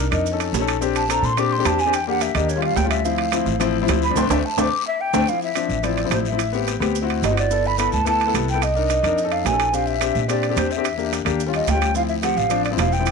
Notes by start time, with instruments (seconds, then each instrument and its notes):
0.00 flute A#4
0.11 upright bass F2, grand piano D4 D#4 A#4, flute D#5, high timbale, short guiro, maracas
0.26 long guiro, maracas
0.32 grand piano C#4 D#4 A4
0.40 high timbale, maracas
0.53 upright bass A#1, low timbale, short guiro, maracas
0.60 grand piano C#4 D#4 A4
0.68 high timbale, short guiro, maracas
0.81 grand piano C4 D4 G4, long guiro, maracas
0.96 flute A5, high timbale, maracas
1.09 grand piano C4 D4 A4, flute A#5, high timbale, low timbale, short guiro, maracas
1.22 upright bass A#2, flute C6, short guiro, maracas
1.37 grand piano C4 D4 G4, flute D6, high timbale, long guiro, maracas
1.52 flute C6
1.58 grand piano C4 D4 G4
1.65 upright bass E2, flute A5, high timbale, low timbale, short guiro, maracas
1.78 flute G#5, short guiro, maracas
1.86 grand piano C4 D4 G4
1.93 flute G5, high timbale, long guiro, maracas
2.07 grand piano A#3 D4 G4, flute F#5
2.21 flute E5, high timbale, low timbale, short guiro, maracas
2.35 upright bass D#2, grand piano A#3 D4 G4, flute D#5, high timbale, short guiro, maracas
2.49 flute C#5, long guiro, maracas
2.56 grand piano G3 C#4 F4
2.62 flute F5, high timbale
2.76 upright bass D2, flute G5, low timbale, short guiro, maracas
2.83 grand piano G3 C#4 F4
2.89 flute E5, high timbale, short guiro, maracas
3.04 grand piano F3 C4 E4, flute F5, long guiro, maracas
3.18 high timbale
3.32 grand piano F3 C4 E4, high timbale, low timbale, short guiro, maracas
3.46 upright bass A1, short guiro, maracas
3.60 grand piano F3 C4 E4, high timbale, long guiro, maracas
3.81 grand piano F3 C4 E4
3.88 upright bass D2, high timbale, low timbale, short guiro, maracas
4.02 flute B5, short guiro, maracas
4.09 grand piano F3 C4 D4
4.15 upright bass D2, grand piano A3 C4 D4, flute C6, high timbale, long guiro, maracas
4.29 upright bass D2, grand piano A3 C4 D4, flute E5, high timbale, long guiro, maracas
4.45 flute A5
4.57 upright bass D2, grand piano A3 C4 D4, flute D6, high timbale, maracas
4.87 flute E5
5.01 flute G5
5.13 upright bass D2, grand piano A3 C4 D4, high timbale, long guiro, maracas
5.27 grand piano F3 C4 E4, flute F5, long guiro, maracas
5.42 flute E5, maracas
5.55 grand piano F3 C4 D4, high timbale, low timbale, short guiro, maracas
5.69 upright bass A1, short guiro, maracas
5.83 grand piano F3 C4 E4, flute D5, high timbale, long guiro, maracas
5.98 high timbale, maracas
6.04 grand piano F3 C4 E4
6.10 upright bass A1, flute C5, high timbale, low timbale, short guiro, maracas
6.25 flute E5, short guiro, maracas
6.32 grand piano F3 C4 E4
6.38 high timbale, long guiro, maracas
6.53 grand piano B3 C4 G4, maracas
6.67 high timbale, low timbale, short guiro, maracas
6.80 upright bass D2, grand piano B3 C4 G4, high timbale, short guiro, maracas
6.95 long guiro, maracas
7.02 grand piano C4 E4 F#4
7.09 high timbale, maracas
7.22 upright bass G1, flute D#5, high timbale, low timbale, short guiro, maracas
7.30 grand piano C4 E4 F#4
7.37 flute D5, high timbale, short guiro, maracas
7.50 grand piano B3 E4 A4, long guiro, maracas
7.65 flute B5, maracas
7.78 grand piano B3 E4 A4, flute B5, high timbale, low timbale, short guiro, maracas
7.92 upright bass D2, flute A5, short guiro, maracas
8.05 grand piano B3 E4 A4, flute A5, high timbale, long guiro, maracas
8.20 high timbale, maracas
8.26 grand piano B3 E4 A4
8.34 upright bass C2, high timbale, low timbale, short guiro, maracas
8.48 flute G5, short guiro, maracas
8.54 grand piano B3 E4 A4
8.62 flute D#5, high timbale, long guiro, maracas
8.75 grand piano D4 D#4 A#4, maracas
8.90 high timbale, low timbale, short guiro, maracas
9.03 upright bass F2, grand piano D4 D#4 A#4, high timbale, short guiro, maracas
9.18 long guiro, maracas
9.23 grand piano C#4 D#4 A4
9.32 flute F5, high timbale, maracas
9.45 upright bass A#1, flute G#5, high timbale, low timbale, short guiro, maracas
9.51 grand piano C#4 D#4 A4
9.60 high timbale, short guiro, maracas
9.73 grand piano C4 D4 G4, flute F5, long guiro, maracas
9.87 flute E5, maracas
10.00 grand piano C4 D4 G4, high timbale, low timbale, short guiro, maracas
10.15 upright bass A#2, short guiro, maracas
10.28 grand piano C4 D4 G4, flute D5, high timbale, long guiro, maracas
10.43 high timbale, maracas
10.49 grand piano C4 D4 G4
10.56 upright bass E2, flute C5, high timbale, low timbale, short guiro, maracas
10.71 flute E5, short guiro, maracas
10.77 grand piano C4 D4 G4
10.84 high timbale, long guiro, maracas
10.98 grand piano A#3 D4 G4, maracas
11.13 high timbale, low timbale, short guiro, maracas
11.25 upright bass D#2, grand piano A#3 D4 G4, high timbale, short guiro, maracas
11.40 long guiro, maracas
11.46 grand piano G3 C#4 F4
11.54 flute D#5, high timbale, maracas
11.67 upright bass D2, flute G5, high timbale, low timbale, short guiro, maracas
11.74 grand piano G3 C#4 F4
11.81 high timbale, short guiro, maracas
11.94 grand piano F3 C4 E4, flute F5, long guiro, maracas
12.09 flute E5, maracas
12.22 grand piano F3 C4 G4, flute F#5, high timbale, low timbale, short guiro, maracas
12.36 upright bass A1, flute F5, short guiro, maracas
12.49 grand piano F3 C4 D4, high timbale, long guiro, maracas
12.64 flute D5, high timbale, maracas
12.71 grand piano F3 C4 E4
12.77 upright bass E1, flute F5, high timbale, low timbale, short guiro, maracas
12.92 flute G5, short guiro, maracas
12.99 grand piano F3 C4 E4
13.06 high timbale, long guiro, maracas